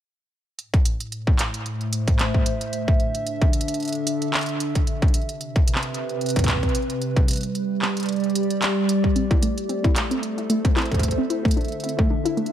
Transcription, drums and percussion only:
0.59 closed hi-hat
0.74 kick, closed hi-hat
0.85 closed hi-hat
1.00 closed hi-hat
1.12 closed hi-hat
1.27 kick
1.39 clap, closed hi-hat
1.54 closed hi-hat
1.66 closed hi-hat
1.81 closed hi-hat
1.93 closed hi-hat
2.08 kick, closed hi-hat
2.19 clap, closed hi-hat
2.34 kick
2.46 closed hi-hat
2.61 closed hi-hat
2.73 closed hi-hat
2.88 kick
3.00 closed hi-hat
3.15 closed hi-hat
3.27 closed hi-hat
3.41 kick, closed hi-hat
3.53 closed hi-hat
3.61 closed hi-hat
3.68 closed hi-hat
3.74 closed hi-hat
3.80 closed hi-hat
3.83 closed hi-hat
3.85 closed hi-hat
3.88 closed hi-hat
3.92 closed hi-hat
3.95 closed hi-hat
4.07 closed hi-hat
4.22 closed hi-hat
4.34 clap, closed hi-hat
4.36 closed hi-hat
4.39 closed hi-hat
4.41 closed hi-hat
4.46 closed hi-hat
4.49 closed hi-hat
4.60 closed hi-hat
4.75 kick, closed hi-hat
4.87 closed hi-hat
5.02 kick, closed hi-hat
5.08 closed hi-hat
5.14 closed hi-hat
5.22 closed hi-hat
5.29 closed hi-hat
5.41 closed hi-hat
5.56 kick, closed hi-hat
5.68 closed hi-hat
5.75 clap
5.83 closed hi-hat
5.94 closed hi-hat
6.09 closed hi-hat
6.21 closed hi-hat
6.26 closed hi-hat
6.29 closed hi-hat
6.36 kick, closed hi-hat
6.39 kick, closed hi-hat
6.44 kick, closed hi-hat
6.48 kick, clap, closed hi-hat
6.53 kick
6.57 kick
6.63 kick, closed hi-hat
6.69 closed hi-hat
6.75 closed hi-hat
6.82 closed hi-hat
6.90 closed hi-hat
7.02 closed hi-hat
7.16 kick, closed hi-hat
7.28 closed hi-hat
7.31 closed hi-hat
7.33 closed hi-hat
7.36 closed hi-hat
7.41 closed hi-hat
7.43 closed hi-hat
7.55 closed hi-hat
7.82 clap
7.97 closed hi-hat
8.00 closed hi-hat
8.03 closed hi-hat
8.06 closed hi-hat
8.09 closed hi-hat
8.12 closed hi-hat
8.16 closed hi-hat
8.20 closed hi-hat
8.24 closed hi-hat
8.30 closed hi-hat
8.35 closed hi-hat
8.43 closed hi-hat
8.50 closed hi-hat
8.62 clap, closed hi-hat
8.89 closed hi-hat
9.04 kick
9.16 closed hi-hat
9.31 kick, closed hi-hat
9.43 closed hi-hat
9.58 closed hi-hat
9.69 closed hi-hat
9.84 kick, closed hi-hat
9.96 clap, closed hi-hat
10.11 closed hi-hat
10.23 closed hi-hat
10.38 closed hi-hat
10.50 closed hi-hat
10.65 kick, closed hi-hat
10.77 clap, closed hi-hat
10.82 closed hi-hat
10.86 closed hi-hat
10.91 kick, closed hi-hat
10.94 kick, closed hi-hat
10.99 kick, closed hi-hat
11.03 kick, closed hi-hat
11.08 kick, closed hi-hat
11.12 kick
11.30 closed hi-hat
11.45 kick, closed hi-hat
11.48 closed hi-hat
11.51 closed hi-hat
11.54 closed hi-hat
11.57 closed hi-hat
11.61 closed hi-hat
11.65 closed hi-hat
11.68 closed hi-hat
11.72 closed hi-hat
11.80 closed hi-hat
11.84 closed hi-hat
11.89 closed hi-hat
11.99 kick
12.26 closed hi-hat
12.37 closed hi-hat
12.46 closed hi-hat

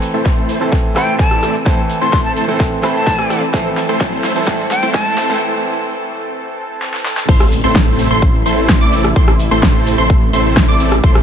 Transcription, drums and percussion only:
0.02 open hi-hat, shaker
0.14 shaker
0.26 kick, snare, shaker
0.38 shaker
0.49 open hi-hat, shaker
0.61 shaker
0.72 kick, snare, shaker
0.85 shaker
0.96 cross-stick, open hi-hat, shaker
1.08 shaker
1.19 kick, snare, shaker
1.31 cross-stick, shaker
1.43 cross-stick, open hi-hat, shaker
1.55 shaker
1.66 kick, snare, shaker
1.78 shaker
1.90 open hi-hat, shaker
2.02 shaker
2.13 kick, snare, shaker
2.25 shaker
2.36 open hi-hat, shaker
2.49 shaker
2.60 kick, snare, shaker
2.72 shaker
2.83 cross-stick, open hi-hat, shaker
2.96 shaker
3.07 kick, snare, shaker
3.19 cross-stick, shaker
3.30 cross-stick, open hi-hat, shaker
3.43 shaker
3.54 kick, snare, shaker
3.66 shaker
3.77 snare, open hi-hat, shaker
3.89 shaker
4.00 kick, snare, shaker
4.13 shaker
4.24 snare, open hi-hat, shaker
4.36 shaker
4.47 kick, snare, shaker
4.60 shaker
4.71 snare, open hi-hat, shaker
4.83 shaker
4.94 kick, snare, shaker
5.07 shaker
5.18 snare, open hi-hat, shaker
5.30 shaker
6.82 snare
6.93 snare
7.05 snare
7.17 snare
7.29 kick, crash, shaker
7.40 cross-stick, shaker
7.52 open hi-hat, shaker
7.64 shaker
7.75 kick, snare, shaker
7.88 shaker
7.99 open hi-hat, shaker
8.11 shaker
8.22 kick, shaker
8.35 shaker
8.46 open hi-hat, shaker
8.58 shaker
8.69 kick, snare, shaker
8.82 shaker
8.93 open hi-hat, shaker
9.04 cross-stick, shaker
9.16 kick, shaker
9.28 cross-stick, shaker
9.40 open hi-hat, shaker
9.52 shaker
9.63 kick, snare, shaker
9.75 shaker
9.86 open hi-hat, shaker
9.99 shaker
10.10 kick, shaker
10.22 shaker
10.33 open hi-hat, shaker
10.46 shaker
10.57 kick, snare, shaker
10.69 shaker
10.80 open hi-hat, shaker
10.92 cross-stick, shaker
11.04 kick, shaker
11.15 cross-stick, shaker

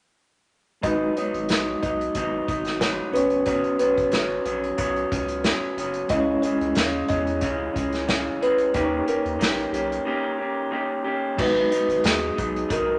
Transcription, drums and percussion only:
0.83 kick, closed hi-hat
1.17 closed hi-hat
1.34 closed hi-hat
1.49 snare, closed hi-hat
1.83 kick, closed hi-hat
2.01 closed hi-hat
2.15 kick, closed hi-hat
2.48 kick, closed hi-hat
2.65 snare, closed hi-hat
2.81 snare, closed hi-hat
3.15 closed hi-hat
3.30 closed hi-hat
3.46 kick, closed hi-hat
3.64 closed hi-hat
3.79 closed hi-hat
3.98 kick, closed hi-hat
4.12 snare, closed hi-hat
4.46 closed hi-hat
4.64 closed hi-hat
4.78 kick, closed hi-hat
4.96 closed hi-hat
5.12 kick, closed hi-hat
5.28 closed hi-hat
5.44 snare, closed hi-hat
5.78 closed hi-hat
5.94 closed hi-hat
6.09 kick, closed hi-hat
6.43 closed hi-hat
6.61 closed hi-hat
6.75 snare, closed hi-hat
7.08 kick, closed hi-hat
7.27 closed hi-hat
7.41 kick, closed hi-hat
7.76 kick, closed hi-hat
7.92 snare, closed hi-hat
8.08 snare, closed hi-hat
8.42 closed hi-hat
8.58 closed hi-hat
8.74 kick, closed hi-hat
9.08 closed hi-hat
9.26 closed hi-hat
9.41 snare, closed hi-hat
9.59 closed hi-hat
9.74 closed hi-hat
9.92 closed hi-hat
11.38 kick, crash
11.72 closed hi-hat
11.90 closed hi-hat
12.04 snare, closed hi-hat
12.38 kick, closed hi-hat
12.56 closed hi-hat
12.70 kick, closed hi-hat

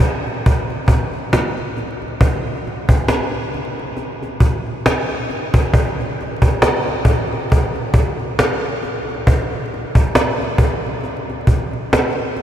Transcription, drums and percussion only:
0.27 cajon slap
0.46 cajon bass
0.70 cajon slap
0.88 cajon bass
1.13 cajon slap
1.33 cajon slap
1.58 cajon slap
1.77 cajon slap
2.02 cajon slap
2.21 cajon bass
2.47 cajon slap
2.67 cajon slap
2.89 cajon bass
3.08 cajon slap
3.35 cajon slap
3.54 cajon slap
3.80 cajon slap
3.97 cajon slap
4.23 cajon slap
4.40 cajon bass
4.66 cajon slap
4.86 cajon slap
5.11 cajon slap
5.30 cajon slap
5.54 cajon bass
5.74 cajon bass
6.00 cajon slap
6.21 cajon slap
6.42 cajon bass
6.62 cajon slap
6.88 cajon slap
7.05 cajon bass
7.33 cajon slap
7.52 cajon bass
7.76 cajon slap
7.94 cajon bass
8.20 cajon slap
8.39 cajon slap
8.64 cajon slap
8.83 cajon slap
9.09 cajon slap
9.27 cajon bass
9.53 cajon slap
9.74 cajon slap
9.95 cajon bass
10.15 cajon slap
10.41 cajon slap
10.58 cajon bass
10.86 cajon slap
11.04 cajon slap
11.30 cajon slap
11.47 cajon bass
11.73 cajon slap
11.93 cajon slap
12.17 cajon slap
12.37 cajon slap

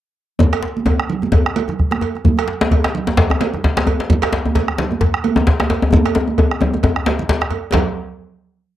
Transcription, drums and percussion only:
0.39 bombo low, djembe tone, high conga, low conga, djembe bass
0.53 bombo rim, cowbell, djembe tone, high conga
0.63 bombo rim, djembe slap, high conga
0.77 high conga
0.86 bombo low, cowbell, djembe tone
1.00 bombo rim, high conga
1.10 high conga, low conga
1.22 djembe tone, high conga
1.32 bombo low, cowbell, djembe slap, djembe tone, djembe bass
1.46 bombo rim
1.56 cowbell, high conga
1.68 bombo rim, djembe tone, low conga
1.79 bombo rim, bombo low, high conga
1.91 bombo rim, djembe slap, high conga
2.01 cowbell, djembe tone
2.15 bombo rim, djembe slap, high conga
2.25 bombo low, high conga, djembe bass, low conga
2.37 bombo rim, cowbell, high conga, djembe tone
2.48 bombo rim, djembe slap, high conga
2.61 djembe slap, high conga
2.71 bombo low, cowbell, djembe tone
2.84 bombo rim, djembe slap, high conga
2.95 high conga, low conga
3.07 djembe slap, high conga, djembe tone
3.17 bombo low, cowbell, djembe slap, djembe bass
3.30 bombo rim, djembe tone
3.41 cowbell, djembe slap, high conga
3.53 bombo rim, djembe tone, low conga
3.64 bombo rim, bombo low, djembe slap, high conga
3.77 bombo rim, djembe slap, high conga
3.87 cowbell, djembe tone
4.00 bombo rim, djembe slap, high conga
4.10 bombo low, high conga, low conga, djembe bass
4.22 bombo rim, cowbell, djembe slap, djembe tone
4.33 bombo rim, djembe slap, high conga
4.45 djembe tone, high conga
4.55 bombo low, cowbell, djembe slap, djembe tone
4.68 bombo rim, high conga
4.78 djembe slap, high conga, low conga
4.91 djembe tone, high conga
5.01 bombo low, cowbell, djembe slap, djembe bass
5.14 bombo rim
5.24 cowbell, high conga
5.36 bombo rim, djembe tone, low conga
5.47 bombo rim, bombo low, djembe slap
5.60 bombo rim, djembe slap, high conga
5.70 cowbell, djembe slap, djembe tone
5.82 bombo rim, djembe tone
5.92 bombo low, djembe slap, djembe tone, high conga, djembe bass, low conga
6.06 bombo rim, cowbell, djembe slap, djembe tone
6.15 djembe slap, djembe tone, high conga
6.28 high conga
6.38 bombo low, cowbell, djembe slap, djembe tone, high conga
6.51 bombo rim
6.61 djembe tone, low conga
6.73 djembe slap, djembe tone, high conga
6.83 bombo rim, bombo low, cowbell, djembe slap, djembe tone, djembe bass
6.96 bombo rim
7.06 cowbell, djembe slap, high conga
7.19 djembe tone, high conga, low conga
7.29 bombo low, djembe slap
7.41 bombo rim, djembe slap
7.50 cowbell, djembe tone, high conga
7.72 bombo low, cowbell, djembe slap, djembe bass, low conga

